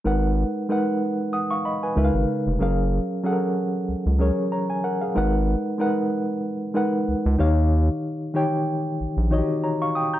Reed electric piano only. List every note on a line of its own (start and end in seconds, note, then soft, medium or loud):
0.04 0.65 G#3 medium
0.04 0.66 D#4 medium
0.04 0.66 A#4 medium
0.04 0.67 B4 medium
0.04 0.67 F#5 medium
0.69 1.60 G#3 medium
0.69 1.60 D#4 medium
0.69 1.33 A#4 medium
0.69 1.34 B4 medium
0.69 1.33 F#5 medium
1.33 1.50 F#5 soft
1.33 1.50 D#6 medium
1.51 1.64 F5 soft
1.51 1.64 C#6 medium
1.65 1.82 D#5 soft
1.65 1.82 B5 medium
1.83 1.97 B4 soft
1.83 2.13 G#5 medium
1.95 2.57 C#3 medium
1.95 2.57 G#3 medium
1.95 2.57 D#4 medium
1.95 2.58 A#4 medium
1.95 2.58 B4 medium
1.95 2.05 E5 medium
2.05 2.61 F5 medium
2.59 3.20 F#3 medium
2.59 3.21 C#4 medium
2.59 3.21 G#4 medium
2.59 3.22 A#4 medium
2.59 3.22 F5 medium
3.24 4.15 F#3 medium
3.24 4.15 C#4 medium
3.24 4.16 G#4 medium
3.24 3.32 A4 medium
3.24 4.16 F#5 medium
3.33 4.19 A#4 medium
4.19 5.10 F#3 medium
4.19 5.11 C#4 medium
4.19 4.52 G#4 medium
4.19 4.52 A#4 medium
4.19 4.52 C#5 medium
4.52 4.69 C#5 soft
4.52 4.69 A#5 medium
4.70 4.83 G#5 medium
4.84 5.01 A#4 medium
4.84 5.01 F#5 medium
5.01 5.32 G#4 soft
5.01 5.32 F5 medium
5.15 5.76 G#3 medium
5.15 5.76 D#4 medium
5.15 5.77 A#4 medium
5.15 5.77 B4 medium
5.15 5.77 F#5 medium
5.78 6.70 G#3 medium
5.78 6.71 D#4 medium
5.78 6.71 A#4 medium
5.78 6.71 B4 medium
5.78 6.72 F#5 medium
6.74 7.38 G#3 medium
6.74 7.37 D#4 medium
6.74 7.39 A#4 medium
6.74 7.39 B4 medium
6.74 7.40 F#5 medium
7.38 8.29 D#3 medium
7.38 8.30 D#4 medium
7.38 8.30 G4 medium
7.38 8.30 C#5 medium
7.38 8.31 F5 medium
8.34 9.25 D#3 medium
8.34 9.26 D#4 medium
8.34 9.26 G4 medium
8.34 9.27 C#5 medium
8.34 9.27 G5 medium
9.30 10.20 D#3 medium
9.30 10.20 D#4 medium
9.30 9.39 F#4 soft
9.30 9.63 C#5 medium
9.30 9.64 D#5 medium
9.38 10.20 G4 medium
9.64 9.80 C#5 soft
9.64 9.80 A#5 medium
9.82 9.95 F5 medium
9.82 9.95 C#6 medium
9.95 10.12 G5 medium
9.95 10.12 D#6 medium
10.14 10.20 A#5 medium
10.14 10.20 G6 medium